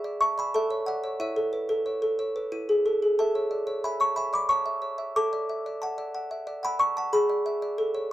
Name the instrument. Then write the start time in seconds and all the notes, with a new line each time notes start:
music box
Already playing: G#4 E5 G#5 B5
0.04 D5
0.21 E5 A5 C#6
0.38 D5 G#5 B5
0.54 A4 E5 A5
0.70 C#5
0.86 D5 F#5
1.04 C#5
1.20 E4 C#5 E5
1.36 A4
1.53 B4
1.69 A4
1.86 C#5
2.02 A4
2.19 C#5
2.36 B4
2.52 E4
2.69 G#4
2.86 A4
3.02 G#4
3.19 A4 E5 A5
3.35 C#5
3.51 D5
3.67 C#5
3.84 E5 G#5 B5
4.00 C#5 A5 C#6
4.16 E5 G#5 B5
4.33 D5 B5 D6
4.49 C#5 A5 C#6
4.66 E5
4.82 C#5
4.98 E5
5.16 A4 A5 D6
5.33 D5
5.49 E5
5.66 D5
5.82 F#5 A5
5.98 D5
6.15 F#5
6.31 E5
6.47 D5
6.63 F#5 G#5 B5
6.79 D5 A5 C#6
6.97 F#5 A5
7.13 G#4 G#5 B5
7.29 D5
7.46 E5
7.62 D5
7.78 A4
7.95 C#5